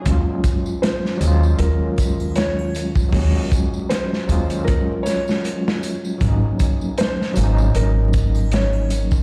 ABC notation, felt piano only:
X:1
M:4/4
L:1/16
Q:"Swing 16ths" 1/4=78
K:Ebdor
V:1 name="Felt piano"
z4 c4 B4 d3 z | z4 c4 B2 d4 z2 | z4 c4 B4 d3 z |]